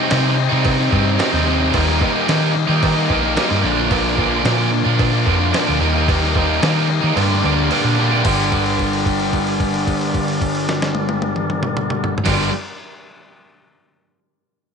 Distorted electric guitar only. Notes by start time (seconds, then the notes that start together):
Already playing: D#4
0.09 C3 G3 C4 D#4
0.37 C3 G3 C4 D#4
0.51 G3 C4 D#4
0.78 G3 C4 D#4
0.91 C3 G3 C4 D#4
1.05 G3 C4 D#4
1.19 C3 G3 C4 D#4
1.33 G3 C4 D#4
1.47 C3 G3 C4 D#4
1.61 G3 C4 D#4
1.74 D#3 G3 A#3 D#4
2.01 D#3 G3 A#3 D#4
2.27 D#3 G3 A#3 D#4
2.54 D#3 G3 A#3 D#4
2.68 G3 A#3 D#4
2.95 G3 A#3 D#4
3.10 D#3 G3 A#3 D#4
3.22 G3 A#3 D#4
3.36 D#3 G3 A#3 D#4
3.49 G3 A#3 D#4
3.62 A#2 D3 F3 A#3 D4
3.76 F3 A#3 D4
3.90 A#2 D3 F3 A#3 D4
4.17 D3 F3 A#3 D4
4.44 A#2 D3 F3 A#3 D4
4.72 D3 F3 A#3 D4
4.85 F3 A#3 D4
5.12 F3 A#3 D4
5.26 D3 F3 A#3 D4
5.39 F3 A#3 D4
5.52 A#2 D3 F3 A#3 D4
5.66 F3 A#3 D4
5.79 D#3 G3 A#3 D#4
5.94 G3 A#3 D#4
6.08 D#3 G3 A#3 D#4
6.35 D#3 G3 A#3 D#4
6.62 D#3 G3 A#3 D#4
6.89 D#3 G3 A#3 D#4
7.02 G3 A#3 D#4
7.17 G2 D3 G3 A#3 D4
7.29 G3 A#3 D4
7.44 D3 G3 A#3 D4
7.57 G3 A#3 D4
7.71 G2 D3 G3 A#3 D4
7.85 G3 A#3 D4
7.98 D3 G3 A#3 D4
8.11 G3 A#3 D4
8.23 G2 D3 G3
12.24 G2 D3 G3